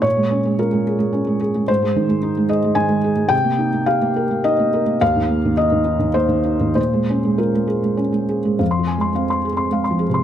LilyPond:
<<
  \new Staff \with { instrumentName = "Felt piano" } { \time 3/4 \key f \minor \tempo 4 = 107 des''4 bes'4. r8 | c''4. ees''8 aes''4 | g''4 f''4 ees''4 | f''4 ees''4 c''4 |
c''4 bes'4 r4 | f''16 c'''16 aes''16 c'''16 f''16 c'''16 aes'16 c'''16 f''16 c'''16 aes'16 c'''16 | }
  \new Staff \with { instrumentName = "Felt piano" } { \clef bass \time 3/4 \key f \minor bes,16 aes16 des'16 aes16 f'16 aes16 aes'16 aes16 des'16 aes16 aes'16 aes16 | aes,16 aes16 ees16 aes16 ees'16 aes16 aes'16 aes16 ees16 aes16 aes'16 aes16 | c16 bes16 ees'16 bes16 g'16 bes16 bes'16 bes16 ees'16 bes16 bes'16 bes16 | ees,16 ees16 bes16 ees16 ees'16 ees16 ees'16 ees16 bes16 ees16 ees'16 ees16 |
bes,16 aes16 des'16 aes16 f'16 aes16 aes'16 aes16 des'16 aes16 aes'16 aes16 | \tuplet 3/2 { f,8 f8 aes8 c'4 c'8 aes8 f8 c8 } | }
>>